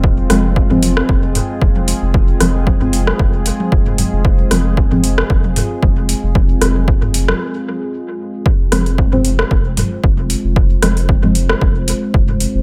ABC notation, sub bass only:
X:1
M:4/4
L:1/16
Q:"Swing 16ths" 1/4=114
K:Fm
V:1 name="Sub bass" clef=bass
E,,, z F,,,2 z F,,,2 z F,,,2 z2 F,,,2 z F,,,- | F,,, z F,,,2 z F,,,2 z F,,,2 z2 F,,,2 z F,,,- | F,,, z F,,,2 z F,,,2 z F,,,2 z2 F,,,2 z F,,,- | F,,, z F,,,2 z F,,,2 z8 z |
z2 F,,,2 z F,,,2 z F,,,2 z2 F,,,2 z F,,,- | F,,, z F,,,2 z F,,,2 z F,,,2 z2 F,,,2 z F,,, |]